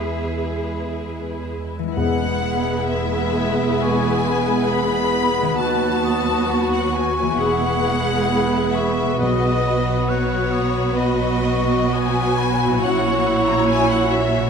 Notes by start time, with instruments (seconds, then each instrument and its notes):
Already playing: double bass section E2, harp E3 G#3 E4 B4, viola section G#3, violin section E4 B4, cello section G#4, flute E5
1.79 harp E3
1.83 harp G#3
1.88 harp E4
1.93 french horn section B3 G#4, harp B4, violin section F#5
1.97 double bass section E1, cello section E2, timpani E2, viola section G#3 B3, bassoon B3, violin section E4 B4, clarinet G#4
2.89 violin section E5
3.80 french horn section B3 G#4, violin section G#5, flute C#6
4.27 flute B5
4.70 violin section B5
5.42 harp D#3
5.46 harp B3
5.51 harp F#4
5.55 clarinet F#4, harp B4, violin section A5
5.60 cello section D#2, double bass section D#2, viola section F#3, french horn section B3 F#4, violin section F#4, flute F#6
6.04 flute D#6
6.51 flute C#6
6.74 violin section F#5
6.95 violin section G#5
7.22 harp E3
7.27 harp B3
7.31 harp G#4
7.36 french horn section B3 G#4, clarinet G#4, harp B4, violin section F#5
7.40 double bass section E1, cello section E2, viola section G#3 B3, bassoon B3, violin section E4 B4
8.30 flute B5
8.75 violin section E5, flute C#6
9.03 harp B2
9.08 harp B3
9.12 harp F#4
9.17 viola section F#3, french horn section B3 F#4, violin section F#4, harp B4, flute D#6
9.21 double bass section B1, cello section B2, timpani B2, violin section D#5
10.09 clarinet F#4, violin section C#5, flute F#6
10.52 flute D#6
10.92 french horn section B3 F#4, violin section D#5, flute B5
11.43 flute C#6
11.93 violin section G#5, flute D#6
12.38 flute B5
12.66 harp A#2
12.70 harp E4
12.74 harp F#4
12.79 viola section E4, harp C#5, flute C#6
12.83 double bass section A#1, cello section A#2, french horn section C#4 F#4, bassoon C#4, clarinet E4, violin section C#5 F#5
13.48 violin section A#5
13.69 violin section G#5
13.91 violin section F#5
14.11 violin section E5
14.38 harp B2
14.43 harp B3
14.47 harp F#4